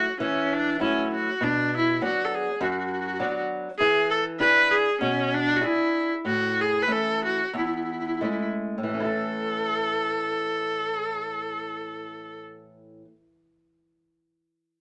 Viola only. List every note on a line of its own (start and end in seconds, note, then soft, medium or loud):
0.00 0.17 F#4 medium
0.21 0.54 C#4 medium
0.53 0.80 D4 medium
0.82 1.10 C#4 medium
1.15 1.45 F#4 medium
1.44 1.73 D4 medium
1.77 2.01 E4 medium
2.05 2.26 F#4 medium
2.25 2.36 A4 medium
2.35 2.61 G#4 medium
2.62 2.68 F#4 medium
2.71 2.76 F#4 soft
2.79 2.84 F#4 soft
2.87 2.92 F#4 soft
2.93 2.98 F#4 medium
3.00 3.05 F#4 medium
3.07 3.12 F#4 medium
3.14 3.19 F#4 medium
3.21 3.27 F#4 medium
3.30 3.35 F#4 soft
3.36 3.42 F#4 medium
3.79 4.08 G#4 loud
4.11 4.24 A4 medium
4.40 4.73 B4 loud
4.71 5.00 G#4 medium
5.01 5.36 C#4 medium
5.35 5.58 D4 loud
5.56 5.66 F#4 medium
5.65 6.12 E4 medium
6.27 6.63 F#4 medium
6.61 6.84 G#4 medium
6.83 6.94 B4 medium
6.92 7.25 A4 medium
7.25 7.53 F#4 medium
7.57 7.64 E4 medium
7.66 7.72 E4 soft
7.75 7.81 E4 soft
7.84 7.90 E4 soft
7.91 7.97 E4 soft
8.00 8.06 E4 soft
8.07 8.13 E4 soft
8.16 8.22 E4 soft
8.22 8.30 E4 medium
8.31 8.38 E4 soft
8.41 8.48 E4 soft
8.93 12.39 A4 medium